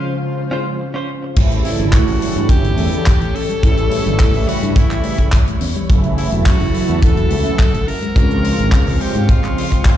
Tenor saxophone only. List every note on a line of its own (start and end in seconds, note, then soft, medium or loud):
0.00 0.76 F4 loud
1.65 1.95 E4 medium
1.93 2.49 F#4 loud
2.50 3.36 G4 loud
3.35 4.50 A4 loud
4.48 4.78 F#4 loud
4.76 5.61 E4 medium
6.18 6.30 E4 medium
6.46 7.04 F#4 loud
7.02 7.89 A4 loud
7.87 9.02 A#4 loud
9.01 9.31 G4 loud
9.29 9.97 F4 loud